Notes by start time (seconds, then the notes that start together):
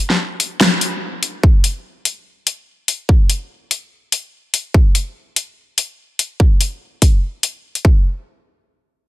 0.10 snare
0.40 closed hi-hat
0.61 snare
0.81 closed hi-hat
1.23 closed hi-hat
1.43 kick
1.64 closed hi-hat
2.05 closed hi-hat
2.47 closed hi-hat
2.88 closed hi-hat
3.09 kick
3.30 closed hi-hat
3.71 closed hi-hat
4.12 closed hi-hat
4.54 closed hi-hat
4.74 kick
4.95 closed hi-hat
5.36 closed hi-hat
5.78 closed hi-hat
6.19 closed hi-hat
6.40 kick
6.61 closed hi-hat
7.02 kick, closed hi-hat
7.43 closed hi-hat
7.75 closed hi-hat
7.85 kick